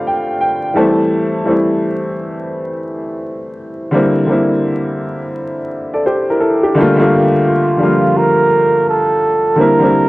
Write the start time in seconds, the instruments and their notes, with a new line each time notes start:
Already playing: upright piano D3 G3 A3 C4 F4 D5 F5
0.07 upright piano G5
0.41 upright piano G5
0.74 upright piano E3 G3 A3 A5
0.78 upright piano C4 E4
1.44 upright piano E3 G3 A3
1.48 upright piano C4 E4
3.91 upright piano D3 G3 A#3
3.95 upright piano C4 E4
4.26 upright piano D3 G3 A#3
4.30 upright piano C4 E4
5.93 upright piano A4 D5
6.06 upright piano G4 C5
6.30 upright piano E4 A#4
6.40 upright piano E4 A4
6.63 upright piano D4 G4
6.75 upright piano D3 G3 A3
6.79 upright piano A#3 F4
6.95 upright piano D3 G3 A3
7.00 upright piano A#3 F4
7.47 flugelhorn F4
7.77 upright piano D3 F3 G3
7.82 upright piano A#3 F4
8.18 flugelhorn A#4
8.89 flugelhorn A4
9.55 upright piano D3 G3 A#3
9.60 upright piano C4 E4, flugelhorn A#4
9.79 upright piano D3 G3 A#3
9.83 upright piano C4 E4